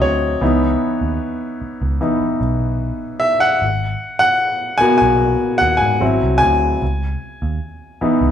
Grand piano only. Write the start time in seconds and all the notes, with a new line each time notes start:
Already playing: F#3 C4 E4 D#5
0.02 C#5
0.41 E3 B3 D#4
2.01 E3 B3 D#4
3.20 E5
3.40 F#5
4.19 F#5
4.78 A#3 B3 F#4 G#5
4.98 G#5
5.58 F#5
5.77 G#5
6.00 F#3 C4 E4
6.38 G#5
8.01 E3 B3 D#4